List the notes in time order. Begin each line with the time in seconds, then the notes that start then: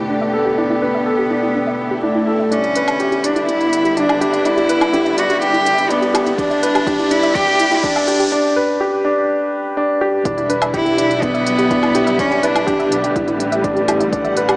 Already playing: E1 D3 A3 B3 D4 G4 A4 B4
0.09 D4
0.21 E5
0.33 B3 A4
0.46 G4
0.58 D4 E4
0.70 E4
0.82 D4 B4
0.94 E5
1.06 A4
1.18 G4
1.30 D4 E4
1.43 E4
1.55 D4, swell
1.67 E5
1.91 G4
2.03 A3 D4 E4
2.15 E4
2.27 D4 A4
2.39 E5
2.51 D3 G3 B3 C#4 D4 E4, closed hi-hat, riser
2.64 E4, closed hi-hat
2.75 D4 B4, closed hi-hat
2.88 E5, closed hi-hat, low woodblock
3.00 G4, closed hi-hat
3.12 G4, closed hi-hat
3.24 D4 E4, closed hi-hat
3.36 E4, closed hi-hat
3.48 D4 E4, closed hi-hat
3.60 E5, closed hi-hat
3.73 closed hi-hat
3.84 G4, closed hi-hat
3.97 D4 E4, closed hi-hat
4.09 E4, closed hi-hat, low woodblock
4.21 D4 G4, closed hi-hat
4.33 E5, closed hi-hat
4.45 D4 E4, closed hi-hat
4.57 G4, closed hi-hat
4.69 E4 B4, closed hi-hat
4.81 E4, closed hi-hat, low woodblock
4.93 D4 G4, closed hi-hat
5.05 E5, closed hi-hat
5.18 D4 F#4, closed hi-hat
5.29 G4, closed hi-hat
5.42 E4 G4, closed hi-hat
5.53 E4, closed hi-hat
5.65 D4, closed hi-hat
5.77 E5, closed hi-hat
5.90 B3 D4, closed hi-hat
6.01 G4, closed hi-hat
6.14 E4 G4, closed hi-hat, low woodblock
6.26 E4, closed hi-hat
6.38 D4, kick, closed hi-hat
6.50 E5, closed hi-hat
6.63 B4, closed hi-hat
6.75 G4, closed hi-hat, low woodblock
6.87 E4 G4, kick, closed hi-hat
6.99 E4, closed hi-hat
7.11 D4 E4, closed hi-hat
7.23 E5, closed hi-hat
7.35 G4, kick, closed hi-hat
7.47 G4, closed hi-hat
7.60 E4, closed hi-hat
7.72 E4, closed hi-hat
7.76 E4
7.83 D4, kick, closed hi-hat
7.96 E5, closed hi-hat, low woodblock
8.08 G4, closed hi-hat
8.20 G4, closed hi-hat
8.32 D4
8.56 B4
8.81 G4
9.05 D4
9.77 D4
10.01 G4
10.25 E1 D3 G3 B3 D4 E4, kick, closed hi-hat
10.37 E4, closed hi-hat
10.49 D4 B4, closed hi-hat
10.61 E5, closed hi-hat, low woodblock
10.74 E4 G4, kick, closed hi-hat
10.85 G4, closed hi-hat
10.97 B1 D4 E4, closed hi-hat
11.09 E4, closed hi-hat
11.22 B3 D4, kick, closed hi-hat
11.34 E5, closed hi-hat
11.47 closed hi-hat
11.58 G4, closed hi-hat
11.71 D4 E4, kick, closed hi-hat
11.83 E4, closed hi-hat, low woodblock
11.95 D4 G4, closed hi-hat
12.07 E5, closed hi-hat
12.19 C#4 D4, kick, closed hi-hat
12.31 G4, closed hi-hat
12.43 D4 E4 B4, closed hi-hat
12.55 E4, closed hi-hat, low woodblock
12.67 D4 G4, kick, closed hi-hat
12.79 E5, closed hi-hat
12.91 B1 D4, closed hi-hat
13.04 G4, closed hi-hat
13.15 A1 E4, kick, closed hi-hat
13.28 E4, closed hi-hat
13.39 D4, closed hi-hat
13.52 E5, closed hi-hat
13.64 D4, kick, closed hi-hat
13.76 G4, closed hi-hat
13.88 E4 G4, closed hi-hat, low woodblock
14.00 E4, closed hi-hat
14.12 D4 F#5, kick, closed hi-hat
14.24 E5, closed hi-hat
14.37 B4, closed hi-hat
14.49 G4, closed hi-hat, low woodblock